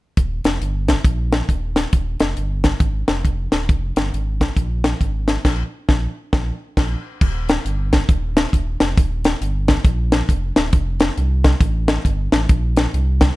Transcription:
0.17 0.40 D#1 loud
0.17 kick loud
0.17 closed hi-hat medium
0.44 0.59 F1 medium
0.44 snare medium
0.44 closed hi-hat medium
0.61 0.98 G1 medium
0.61 closed hi-hat medium
0.88 kick medium
0.88 snare medium
0.88 closed hi-hat medium
1.04 1.42 A#1 medium
1.04 kick loud
1.04 closed hi-hat medium
1.32 snare loud
1.32 closed hi-hat medium
1.49 1.86 D#1 medium
1.49 kick medium
1.49 closed hi-hat medium
1.76 snare medium
1.76 closed hi-hat medium
1.93 2.16 D#1 loud
1.93 kick loud
1.93 closed hi-hat medium
2.20 2.35 F1 medium
2.20 snare medium
2.20 closed hi-hat medium
2.37 2.75 G1 medium
2.37 closed hi-hat medium
2.64 kick medium
2.64 snare medium
2.64 closed hi-hat medium
2.80 3.04 G#1 loud
2.80 kick loud
2.80 closed hi-hat medium
3.08 3.23 F1 medium
3.08 snare loud
3.08 closed hi-hat medium
3.25 3.48 F1 medium
3.25 kick medium
3.25 closed hi-hat medium
3.52 3.71 D#1 loud
3.52 snare medium
3.52 closed hi-hat medium
3.69 3.92 F1 loud
3.69 kick loud
3.69 closed hi-hat medium
3.96 4.11 G1 medium
3.96 snare loud
3.96 closed hi-hat medium
4.14 4.51 G#1 loud
4.14 closed hi-hat medium
4.41 kick medium
4.41 snare medium
4.41 closed hi-hat medium
4.57 4.94 A#1 medium
4.57 kick loud
4.57 closed hi-hat medium
4.84 snare loud
4.84 closed hi-hat medium
5.01 5.38 G#1 medium
5.01 kick medium
5.01 closed hi-hat medium
5.28 snare medium
5.28 closed hi-hat medium
5.45 5.64 A#1 loud
5.45 kick loud
5.45 snare loud
5.45 crash medium
5.89 6.07 A#1 loud
5.89 kick medium
5.89 snare medium
6.33 6.52 A#1 loud
6.33 kick loud
6.33 snare loud
6.77 6.96 A#1 loud
6.77 kick medium
6.77 snare medium
6.77 crash medium
7.21 7.59 D#1 loud
7.21 kick loud
7.21 crash medium
7.49 snare loud
7.49 closed hi-hat medium
7.65 8.03 G1 medium
7.65 closed hi-hat medium
7.93 kick medium
7.93 snare medium
7.93 closed hi-hat medium
8.09 8.46 D#1 medium
8.09 kick loud
8.09 closed hi-hat medium
8.37 snare loud
8.37 closed hi-hat medium
8.53 8.77 D#1 medium
8.53 kick medium
8.53 closed hi-hat medium
8.80 8.95 F1 medium
8.80 snare loud
8.80 closed hi-hat medium
8.98 9.35 D#1 loud
8.98 kick loud
8.98 closed hi-hat medium
9.24 snare loud
9.24 closed hi-hat medium
9.41 9.79 G1 medium
9.41 closed hi-hat medium
9.68 kick medium
9.68 snare loud
9.68 closed hi-hat medium
9.85 10.22 A#1 loud
9.85 kick loud
9.85 closed hi-hat medium
10.12 snare loud
10.12 closed hi-hat medium
10.29 10.52 F1 medium
10.29 kick medium
10.29 closed hi-hat medium
10.56 10.71 D#1 medium
10.56 snare loud
10.56 closed hi-hat medium
10.73 11.11 F1 loud
10.73 kick loud
10.73 closed hi-hat loud
11.00 snare loud
11.00 closed hi-hat medium
11.17 11.55 C2 medium
11.17 closed hi-hat medium
11.44 kick medium
11.44 snare medium
11.44 closed hi-hat medium
11.61 11.98 A1 medium
11.61 kick loud
11.61 closed hi-hat medium
11.88 snare loud
11.88 closed hi-hat medium
12.05 12.29 G1 medium
12.05 kick medium
12.05 closed hi-hat medium
12.32 12.47 A1 medium
12.32 snare loud
12.32 closed hi-hat medium
12.49 12.87 A#1 loud
12.49 kick loud
12.49 closed hi-hat loud
12.77 snare loud
12.77 closed hi-hat medium
12.94 13.31 C2 medium
12.94 closed hi-hat medium
13.21 kick medium
13.21 snare medium
13.21 closed hi-hat medium

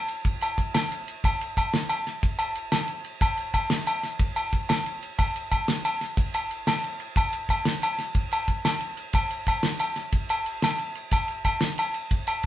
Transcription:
0.08 ride soft
0.25 kick medium
0.25 ride medium
0.41 ride medium
0.41 low agogo medium
0.58 kick medium
0.58 ride medium
0.74 snare medium
0.74 ride medium
0.74 low agogo medium
0.92 ride medium
1.08 ride soft
1.24 kick medium
1.24 ride medium
1.24 low agogo medium
1.41 ride medium
1.57 kick medium
1.57 ride soft
1.57 low agogo medium
1.74 snare medium
1.74 ride medium
1.89 ride soft
1.89 low agogo medium
2.07 snare soft
2.07 ride soft
2.23 kick medium
2.23 ride medium
2.39 ride soft
2.39 low agogo medium
2.55 ride soft
2.72 snare medium
2.72 ride medium
2.72 low agogo medium
2.88 ride soft
3.05 ride soft
3.21 kick medium
3.21 ride medium
3.21 low agogo medium
3.37 ride medium
3.54 kick medium
3.54 ride medium
3.54 low agogo medium
3.70 snare loud
3.70 ride medium
3.87 ride medium
3.87 low agogo medium
4.03 snare soft
4.03 ride medium
4.20 kick medium
4.20 ride medium
4.36 ride medium
4.36 low agogo medium
4.53 kick medium
4.53 ride medium
4.69 snare medium
4.69 ride medium
4.69 low agogo medium
4.86 ride soft
5.03 ride soft
5.19 kick medium
5.19 ride medium
5.19 low agogo medium
5.36 ride soft
5.52 kick medium
5.52 ride soft
5.52 low agogo medium
5.68 snare medium
5.68 ride medium
5.85 ride soft
5.85 low agogo medium
6.01 snare soft
6.01 ride soft
6.17 kick medium
6.17 ride medium
6.34 ride medium
6.34 low agogo medium
6.51 ride medium
6.67 snare medium
6.67 ride medium
6.67 low agogo medium
6.84 ride medium
7.00 ride medium
7.16 kick medium
7.16 ride medium
7.16 low agogo medium
7.33 ride medium
7.49 kick medium
7.49 ride medium
7.49 low agogo medium
7.65 snare medium
7.65 ride medium
7.82 ride medium
7.82 low agogo medium
7.98 snare soft
7.98 ride soft
8.15 kick medium
8.15 ride medium
8.31 ride medium
8.31 low agogo medium
8.48 kick medium
8.48 ride soft
8.65 snare medium
8.65 ride medium
8.65 low agogo medium
8.81 ride medium
8.97 ride medium
9.13 kick medium
9.13 ride medium
9.13 low agogo medium
9.31 ride medium
9.46 kick medium
9.46 ride medium
9.46 low agogo medium
9.63 snare loud
9.63 ride medium
9.79 ride medium
9.79 low agogo medium
9.96 snare soft
9.96 ride soft
10.12 kick medium
10.12 ride medium
10.29 ride medium
10.29 low agogo medium
10.46 ride soft
10.62 snare medium
10.62 ride medium
10.62 low agogo medium
10.78 ride medium
10.95 ride soft
11.11 kick medium
11.11 ride medium
11.11 low agogo medium
11.28 ride soft
11.45 kick medium
11.45 ride soft
11.45 low agogo medium
11.61 snare loud
11.61 ride medium
11.78 ride medium
11.78 low agogo medium
11.94 ride soft
12.11 kick medium
12.11 ride medium
12.27 ride medium
12.27 low agogo medium

